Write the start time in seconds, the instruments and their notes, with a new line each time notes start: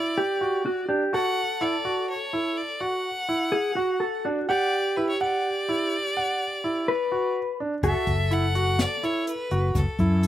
Already playing: grand piano E4, clean electric guitar F#4, violin D5
0.18 clean electric guitar G4
0.41 grand piano F#4
0.66 clean electric guitar F#4
0.88 grand piano D4, clean electric guitar G4
1.13 grand piano F#4, clean electric guitar A4, violin F#5
1.61 grand piano E4, violin D5
1.85 grand piano F#4
2.10 violin C#5
2.33 grand piano E4
2.57 violin D5
2.80 grand piano F#4, violin F#5
3.29 grand piano E4
3.52 clean electric guitar G#4
3.75 clean electric guitar F#4, grand piano F#4
4.00 clean electric guitar A4
4.25 grand piano D4, clean electric guitar F#4
4.49 clean electric guitar G4, violin D5, grand piano F#5
4.96 grand piano E4, violin B4
5.09 violin C#5
5.21 violin D5, grand piano F#5
5.69 grand piano E4
6.17 grand piano F#5
6.64 grand piano E4
6.88 clean electric guitar B4
7.12 grand piano F#4
7.60 grand piano D4
7.83 fretless electric bass F#1, grand piano F#4, clean electric guitar A4, kick, closed hi-hat
7.87 violin E5
8.07 fretless electric bass F#1, kick, closed hi-hat
8.31 grand piano E4, violin F#5, closed hi-hat
8.55 grand piano F#4, closed hi-hat
8.79 violin D5, snare, closed hi-hat
9.03 grand piano E4, violin C#5, closed hi-hat
9.27 violin B4, closed hi-hat
9.51 fretless electric bass F#1, grand piano F#4, closed hi-hat
9.75 fretless electric bass F#1, violin A4, kick, snare, closed hi-hat
9.99 fretless electric bass F#2, grand piano E4, kick, closed hi-hat
10.23 closed hi-hat